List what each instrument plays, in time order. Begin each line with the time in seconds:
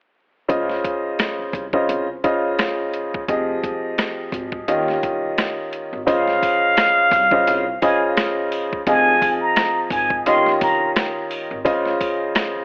0.48 upright bass C#2, upright piano C#3 C#4 F4 C5 D#5, kick, closed hi-hat
0.69 snare
0.85 kick, closed hi-hat
1.19 cross-stick, snare, closed hi-hat
1.39 muted upright bass stroke
1.53 upright bass C2, kick, closed hi-hat
1.73 upright piano C#3 C#4 F4 C5 D#5, kick
1.89 upright bass C2, closed hi-hat
2.24 upright piano C#3 C#4 F4 C5 D#5, kick, closed hi-hat
2.59 cross-stick, snare, closed hi-hat
2.94 closed hi-hat
3.14 kick
3.28 upright bass F1, upright piano F3 C4 G4 G#4 D#5, kick, closed hi-hat
3.63 upright bass F1, kick, closed hi-hat
3.98 cross-stick, snare, closed hi-hat
4.32 upright bass G#1, kick, closed hi-hat
4.52 kick
4.68 upright bass D#2, upright piano D#3 C#4 F4 G4 D#5, closed hi-hat
4.88 snare
5.03 upright bass C2, kick, closed hi-hat
5.38 cross-stick, snare, closed hi-hat
5.73 closed hi-hat
5.93 upright bass G#1
6.06 upright bass C#2, upright piano C#3 C#4 F4 C5 D#5, muted trumpet F5, kick, closed hi-hat, sleigh bells
6.28 snare
6.43 kick, closed hi-hat, sleigh bells
6.77 cross-stick, snare, closed hi-hat, sleigh bells
6.97 muted upright bass stroke
7.11 upright bass C2, kick, closed hi-hat, sleigh bells
7.31 upright piano C#3 C#4 F4 C5 D#5, kick
7.47 upright bass C2, closed hi-hat, sleigh bells
7.82 upright piano C#3 C#4 F4 C5 D#5, muted trumpet G#5, kick, closed hi-hat, sleigh bells
8.17 cross-stick, snare, closed hi-hat, sleigh bells
8.52 closed hi-hat, sleigh bells
8.73 kick
8.87 upright bass F1, upright piano F3 C4 F4 G#4 D#5, muted trumpet G#5, kick, closed hi-hat, sleigh bells
9.22 upright bass F1, kick, closed hi-hat, sleigh bells
9.41 muted trumpet A#5
9.56 cross-stick, snare, closed hi-hat, sleigh bells
9.90 upright bass G#1, muted trumpet G#5, kick, closed hi-hat, sleigh bells
10.10 kick
10.26 upright bass D#2, upright piano D#3 C#4 F4 G4 D#5, muted trumpet C6, closed hi-hat, sleigh bells
10.46 snare
10.61 upright bass C2, muted trumpet A#5, kick, closed hi-hat, sleigh bells
10.96 cross-stick, snare, closed hi-hat, sleigh bells
11.31 closed hi-hat, sleigh bells
11.51 upright bass G#1
11.65 upright bass C#2, upright piano C#3 C#4 F4 C5 D#5, kick, closed hi-hat, sleigh bells
11.86 snare
12.01 kick, closed hi-hat, sleigh bells
12.35 cross-stick, snare, closed hi-hat, sleigh bells
12.55 muted upright bass stroke